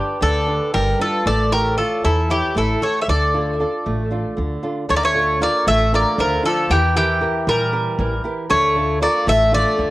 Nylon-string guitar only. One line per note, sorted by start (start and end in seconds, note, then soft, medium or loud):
0.00 0.36 D4 soft
0.00 0.36 G4 soft
0.00 0.36 B4 medium
0.21 0.72 D3 medium
0.46 0.89 D4 medium
0.46 0.89 G4 soft
0.46 0.89 B4 medium
0.74 1.24 G3 medium
0.99 1.20 D4 medium
0.99 1.21 G4 soft
0.99 1.21 B4 medium
1.26 1.76 A3 medium
1.52 1.76 E4 soft
1.52 1.76 A4 soft
1.52 1.77 C#5 soft
1.77 2.19 E4 medium
1.77 2.19 A4 soft
1.77 2.20 C#5 medium
2.04 2.54 E3 medium
2.29 2.71 E4 soft
2.29 2.71 A4 soft
2.29 2.72 C#5 medium
2.55 3.06 A3 medium
2.81 3.02 E4 medium
2.81 3.02 A4 medium
2.81 3.03 C#5 medium
3.08 3.58 D3 medium
3.34 3.58 D4 soft
3.34 3.58 F4 soft
3.34 3.59 A4 soft
3.59 4.01 D4 soft
3.59 4.01 F4 soft
3.59 4.01 A4 medium
3.86 4.36 A3 medium
4.11 4.52 D4 soft
4.11 4.53 F4 soft
4.11 4.53 A4 medium
4.37 4.87 D3 medium
4.63 4.84 D4 medium
4.63 4.84 F4 soft
4.63 4.84 A4 medium
4.89 5.39 D3 medium
5.14 5.39 D4 soft
5.14 5.39 F4 soft
5.14 5.40 A4 soft
5.40 5.82 D4 medium
5.40 5.82 F4 soft
5.40 5.82 A4 medium
5.67 6.17 A3 medium
5.92 6.34 D4 soft
5.92 6.34 F4 soft
5.92 6.34 A4 medium
6.18 6.68 D3 medium
6.43 6.64 D4 medium
6.43 6.64 F4 soft
6.43 6.65 A4 medium
6.69 7.19 E3 medium
6.95 7.20 E4 soft
6.95 7.20 G4 soft
6.95 7.20 A#4 medium
7.21 7.62 E4 soft
7.21 7.62 G4 soft
7.21 7.63 A#4 medium
7.47 7.97 E3 medium
7.72 8.14 E4 medium
7.72 8.14 G4 soft
7.72 8.14 A#4 medium
7.99 8.49 E3 medium
8.24 8.45 E4 medium
8.24 8.45 G4 soft
8.24 8.45 A#4 medium
8.50 9.00 D3 medium
8.76 8.99 D4 soft
8.76 9.00 F4 soft
8.76 9.00 A4 medium
9.01 9.42 D4 medium
9.01 9.43 F4 medium
9.01 9.43 A4 medium
9.27 9.77 A3 medium
9.52 9.90 D4 medium
9.52 9.90 F4 soft
9.52 9.90 A4 medium
9.77 9.90 D3 medium